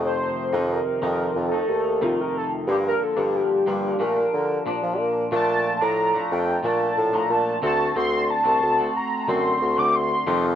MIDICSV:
0, 0, Header, 1, 4, 480
1, 0, Start_track
1, 0, Key_signature, -2, "major"
1, 0, Tempo, 660284
1, 25, Time_signature, 4, 2, 24, 8
1, 7670, End_track
2, 0, Start_track
2, 0, Title_t, "Soft synth lead"
2, 0, Program_c, 0, 80
2, 36, Note_on_c, 0, 72, 110
2, 524, Note_on_c, 0, 70, 96
2, 535, Note_off_c, 0, 72, 0
2, 1001, Note_on_c, 0, 69, 100
2, 1012, Note_off_c, 0, 70, 0
2, 1481, Note_on_c, 0, 65, 85
2, 1492, Note_off_c, 0, 69, 0
2, 1604, Note_on_c, 0, 70, 93
2, 1615, Note_off_c, 0, 65, 0
2, 1715, Note_off_c, 0, 70, 0
2, 1725, Note_on_c, 0, 69, 74
2, 1827, Note_off_c, 0, 69, 0
2, 1959, Note_on_c, 0, 67, 91
2, 2010, Note_off_c, 0, 67, 0
2, 2084, Note_on_c, 0, 70, 95
2, 2205, Note_on_c, 0, 69, 98
2, 2216, Note_off_c, 0, 70, 0
2, 2445, Note_on_c, 0, 67, 89
2, 2456, Note_off_c, 0, 69, 0
2, 2926, Note_on_c, 0, 70, 84
2, 2937, Note_off_c, 0, 67, 0
2, 3636, Note_off_c, 0, 70, 0
2, 3883, Note_on_c, 0, 81, 95
2, 4239, Note_on_c, 0, 82, 89
2, 4250, Note_off_c, 0, 81, 0
2, 4599, Note_on_c, 0, 79, 85
2, 4610, Note_off_c, 0, 82, 0
2, 4837, Note_on_c, 0, 81, 81
2, 4848, Note_off_c, 0, 79, 0
2, 5197, Note_on_c, 0, 82, 79
2, 5208, Note_off_c, 0, 81, 0
2, 5318, Note_on_c, 0, 81, 90
2, 5329, Note_off_c, 0, 82, 0
2, 5552, Note_off_c, 0, 81, 0
2, 5560, Note_on_c, 0, 81, 88
2, 5777, Note_off_c, 0, 81, 0
2, 5795, Note_on_c, 0, 84, 101
2, 6036, Note_on_c, 0, 81, 109
2, 6047, Note_off_c, 0, 84, 0
2, 6518, Note_on_c, 0, 82, 91
2, 6529, Note_off_c, 0, 81, 0
2, 6755, Note_on_c, 0, 84, 92
2, 6766, Note_off_c, 0, 82, 0
2, 7117, Note_on_c, 0, 86, 93
2, 7128, Note_off_c, 0, 84, 0
2, 7238, Note_on_c, 0, 84, 102
2, 7249, Note_off_c, 0, 86, 0
2, 7593, Note_off_c, 0, 84, 0
2, 7670, End_track
3, 0, Start_track
3, 0, Title_t, "Clean electric guitar"
3, 0, Program_c, 1, 27
3, 0, Note_on_c, 1, 41, 81
3, 0, Note_on_c, 1, 48, 87
3, 0, Note_on_c, 1, 51, 100
3, 0, Note_on_c, 1, 57, 102
3, 0, Note_on_c, 1, 63, 97
3, 373, Note_off_c, 1, 63, 0
3, 379, Note_off_c, 1, 51, 0
3, 380, Note_off_c, 1, 48, 0
3, 382, Note_on_c, 1, 63, 56
3, 383, Note_off_c, 1, 41, 0
3, 387, Note_off_c, 1, 57, 0
3, 388, Note_on_c, 1, 48, 58
3, 388, Note_on_c, 1, 51, 60
3, 393, Note_on_c, 1, 41, 49
3, 730, Note_off_c, 1, 41, 0
3, 734, Note_off_c, 1, 48, 0
3, 735, Note_off_c, 1, 51, 0
3, 739, Note_on_c, 1, 41, 64
3, 740, Note_off_c, 1, 63, 0
3, 743, Note_on_c, 1, 48, 82
3, 743, Note_on_c, 1, 51, 81
3, 749, Note_on_c, 1, 63, 75
3, 1094, Note_off_c, 1, 63, 0
3, 1102, Note_off_c, 1, 41, 0
3, 1103, Note_on_c, 1, 63, 58
3, 1104, Note_off_c, 1, 48, 0
3, 1105, Note_off_c, 1, 51, 0
3, 1112, Note_on_c, 1, 57, 52
3, 1120, Note_on_c, 1, 51, 49
3, 1461, Note_off_c, 1, 51, 0
3, 1464, Note_on_c, 1, 41, 74
3, 1465, Note_off_c, 1, 57, 0
3, 1465, Note_off_c, 1, 63, 0
3, 1467, Note_on_c, 1, 48, 75
3, 1470, Note_on_c, 1, 51, 81
3, 1474, Note_on_c, 1, 57, 69
3, 1474, Note_on_c, 1, 63, 78
3, 1940, Note_off_c, 1, 48, 0
3, 1943, Note_on_c, 1, 50, 58
3, 1945, Note_off_c, 1, 41, 0
3, 1947, Note_off_c, 1, 51, 0
3, 1950, Note_off_c, 1, 57, 0
3, 1950, Note_off_c, 1, 63, 0
3, 1950, Note_on_c, 1, 53, 57
3, 1953, Note_on_c, 1, 58, 67
3, 1961, Note_on_c, 1, 62, 73
3, 2292, Note_off_c, 1, 62, 0
3, 2295, Note_off_c, 1, 58, 0
3, 2298, Note_off_c, 1, 53, 0
3, 2301, Note_off_c, 1, 50, 0
3, 2301, Note_on_c, 1, 62, 62
3, 2304, Note_on_c, 1, 58, 65
3, 2307, Note_on_c, 1, 53, 62
3, 2310, Note_on_c, 1, 50, 53
3, 2312, Note_on_c, 1, 43, 47
3, 2652, Note_off_c, 1, 43, 0
3, 2655, Note_off_c, 1, 50, 0
3, 2659, Note_off_c, 1, 53, 0
3, 2660, Note_on_c, 1, 43, 72
3, 2661, Note_off_c, 1, 58, 0
3, 2664, Note_off_c, 1, 62, 0
3, 2664, Note_on_c, 1, 50, 72
3, 2668, Note_on_c, 1, 53, 76
3, 2670, Note_on_c, 1, 58, 79
3, 2673, Note_on_c, 1, 62, 77
3, 2896, Note_off_c, 1, 53, 0
3, 2898, Note_off_c, 1, 50, 0
3, 2901, Note_on_c, 1, 46, 79
3, 2903, Note_off_c, 1, 43, 0
3, 2903, Note_off_c, 1, 62, 0
3, 2904, Note_on_c, 1, 53, 72
3, 2906, Note_off_c, 1, 58, 0
3, 2909, Note_on_c, 1, 57, 79
3, 2912, Note_on_c, 1, 62, 81
3, 3017, Note_off_c, 1, 62, 0
3, 3023, Note_off_c, 1, 46, 0
3, 3025, Note_off_c, 1, 53, 0
3, 3026, Note_on_c, 1, 62, 58
3, 3028, Note_off_c, 1, 57, 0
3, 3042, Note_on_c, 1, 53, 46
3, 3382, Note_off_c, 1, 53, 0
3, 3386, Note_off_c, 1, 62, 0
3, 3386, Note_on_c, 1, 46, 75
3, 3391, Note_on_c, 1, 53, 77
3, 3398, Note_on_c, 1, 62, 81
3, 3853, Note_off_c, 1, 46, 0
3, 3862, Note_on_c, 1, 46, 76
3, 3865, Note_off_c, 1, 53, 0
3, 3868, Note_on_c, 1, 53, 81
3, 3869, Note_off_c, 1, 62, 0
3, 3869, Note_on_c, 1, 57, 88
3, 3872, Note_on_c, 1, 62, 82
3, 4216, Note_off_c, 1, 62, 0
3, 4220, Note_off_c, 1, 57, 0
3, 4222, Note_off_c, 1, 53, 0
3, 4224, Note_off_c, 1, 46, 0
3, 4224, Note_on_c, 1, 62, 69
3, 4229, Note_on_c, 1, 57, 61
3, 4231, Note_on_c, 1, 53, 53
3, 4454, Note_off_c, 1, 62, 0
3, 4463, Note_off_c, 1, 57, 0
3, 4463, Note_on_c, 1, 62, 63
3, 4469, Note_off_c, 1, 53, 0
3, 4471, Note_on_c, 1, 57, 52
3, 4479, Note_on_c, 1, 53, 49
3, 4817, Note_off_c, 1, 53, 0
3, 4820, Note_on_c, 1, 46, 62
3, 4823, Note_off_c, 1, 57, 0
3, 4825, Note_off_c, 1, 62, 0
3, 4826, Note_on_c, 1, 53, 67
3, 4832, Note_on_c, 1, 57, 66
3, 4836, Note_on_c, 1, 62, 70
3, 5175, Note_off_c, 1, 62, 0
3, 5178, Note_off_c, 1, 57, 0
3, 5183, Note_off_c, 1, 46, 0
3, 5183, Note_off_c, 1, 53, 0
3, 5184, Note_on_c, 1, 62, 70
3, 5187, Note_on_c, 1, 57, 71
3, 5192, Note_on_c, 1, 53, 72
3, 5194, Note_on_c, 1, 46, 59
3, 5536, Note_off_c, 1, 46, 0
3, 5536, Note_off_c, 1, 57, 0
3, 5539, Note_on_c, 1, 50, 89
3, 5542, Note_off_c, 1, 53, 0
3, 5545, Note_off_c, 1, 62, 0
3, 5545, Note_on_c, 1, 57, 85
3, 5548, Note_on_c, 1, 60, 88
3, 5550, Note_on_c, 1, 66, 94
3, 5770, Note_off_c, 1, 50, 0
3, 5775, Note_off_c, 1, 57, 0
3, 5778, Note_off_c, 1, 60, 0
3, 5778, Note_on_c, 1, 50, 77
3, 5782, Note_off_c, 1, 66, 0
3, 5784, Note_on_c, 1, 57, 78
3, 5787, Note_on_c, 1, 60, 78
3, 5790, Note_on_c, 1, 66, 81
3, 6126, Note_off_c, 1, 66, 0
3, 6131, Note_off_c, 1, 60, 0
3, 6133, Note_off_c, 1, 57, 0
3, 6135, Note_on_c, 1, 66, 63
3, 6137, Note_off_c, 1, 50, 0
3, 6140, Note_on_c, 1, 60, 69
3, 6142, Note_on_c, 1, 57, 64
3, 6146, Note_on_c, 1, 50, 58
3, 6370, Note_off_c, 1, 66, 0
3, 6379, Note_off_c, 1, 60, 0
3, 6379, Note_on_c, 1, 66, 58
3, 6385, Note_off_c, 1, 57, 0
3, 6386, Note_off_c, 1, 50, 0
3, 6388, Note_on_c, 1, 60, 56
3, 6394, Note_on_c, 1, 57, 47
3, 6739, Note_off_c, 1, 57, 0
3, 6742, Note_on_c, 1, 50, 61
3, 6743, Note_off_c, 1, 66, 0
3, 6744, Note_off_c, 1, 60, 0
3, 6748, Note_on_c, 1, 57, 64
3, 6753, Note_on_c, 1, 60, 80
3, 6758, Note_on_c, 1, 66, 66
3, 7092, Note_off_c, 1, 66, 0
3, 7098, Note_off_c, 1, 60, 0
3, 7099, Note_off_c, 1, 57, 0
3, 7101, Note_on_c, 1, 66, 75
3, 7102, Note_off_c, 1, 50, 0
3, 7106, Note_on_c, 1, 60, 66
3, 7108, Note_on_c, 1, 57, 57
3, 7111, Note_on_c, 1, 50, 59
3, 7459, Note_off_c, 1, 57, 0
3, 7460, Note_off_c, 1, 50, 0
3, 7461, Note_on_c, 1, 41, 82
3, 7463, Note_on_c, 1, 48, 92
3, 7464, Note_off_c, 1, 66, 0
3, 7465, Note_off_c, 1, 60, 0
3, 7465, Note_on_c, 1, 51, 95
3, 7468, Note_on_c, 1, 57, 82
3, 7468, Note_on_c, 1, 63, 88
3, 7471, Note_on_c, 1, 65, 94
3, 7670, Note_off_c, 1, 41, 0
3, 7670, Note_off_c, 1, 48, 0
3, 7670, Note_off_c, 1, 51, 0
3, 7670, Note_off_c, 1, 57, 0
3, 7670, Note_off_c, 1, 63, 0
3, 7670, Note_off_c, 1, 65, 0
3, 7670, End_track
4, 0, Start_track
4, 0, Title_t, "Bassoon"
4, 0, Program_c, 2, 70
4, 0, Note_on_c, 2, 41, 97
4, 169, Note_off_c, 2, 41, 0
4, 385, Note_on_c, 2, 41, 103
4, 577, Note_off_c, 2, 41, 0
4, 746, Note_on_c, 2, 41, 96
4, 938, Note_off_c, 2, 41, 0
4, 987, Note_on_c, 2, 41, 77
4, 1179, Note_off_c, 2, 41, 0
4, 1225, Note_on_c, 2, 39, 85
4, 1610, Note_off_c, 2, 39, 0
4, 1944, Note_on_c, 2, 43, 98
4, 2137, Note_off_c, 2, 43, 0
4, 2304, Note_on_c, 2, 43, 90
4, 2497, Note_off_c, 2, 43, 0
4, 2669, Note_on_c, 2, 43, 89
4, 2860, Note_off_c, 2, 43, 0
4, 2907, Note_on_c, 2, 46, 101
4, 3099, Note_off_c, 2, 46, 0
4, 3152, Note_on_c, 2, 50, 90
4, 3342, Note_off_c, 2, 50, 0
4, 3389, Note_on_c, 2, 53, 42
4, 3436, Note_off_c, 2, 53, 0
4, 3510, Note_on_c, 2, 53, 85
4, 3628, Note_on_c, 2, 58, 89
4, 3638, Note_off_c, 2, 53, 0
4, 3819, Note_off_c, 2, 58, 0
4, 3867, Note_on_c, 2, 46, 114
4, 4155, Note_off_c, 2, 46, 0
4, 4228, Note_on_c, 2, 45, 96
4, 4516, Note_off_c, 2, 45, 0
4, 4590, Note_on_c, 2, 41, 90
4, 4781, Note_off_c, 2, 41, 0
4, 4829, Note_on_c, 2, 46, 96
4, 5020, Note_off_c, 2, 46, 0
4, 5069, Note_on_c, 2, 45, 100
4, 5260, Note_off_c, 2, 45, 0
4, 5304, Note_on_c, 2, 46, 96
4, 5497, Note_off_c, 2, 46, 0
4, 5545, Note_on_c, 2, 38, 107
4, 5738, Note_off_c, 2, 38, 0
4, 5787, Note_on_c, 2, 38, 107
4, 6075, Note_off_c, 2, 38, 0
4, 6148, Note_on_c, 2, 36, 90
4, 6243, Note_off_c, 2, 36, 0
4, 6267, Note_on_c, 2, 38, 101
4, 6459, Note_off_c, 2, 38, 0
4, 6747, Note_on_c, 2, 42, 96
4, 6939, Note_off_c, 2, 42, 0
4, 6989, Note_on_c, 2, 38, 100
4, 7372, Note_off_c, 2, 38, 0
4, 7466, Note_on_c, 2, 41, 110
4, 7670, Note_off_c, 2, 41, 0
4, 7670, End_track
0, 0, End_of_file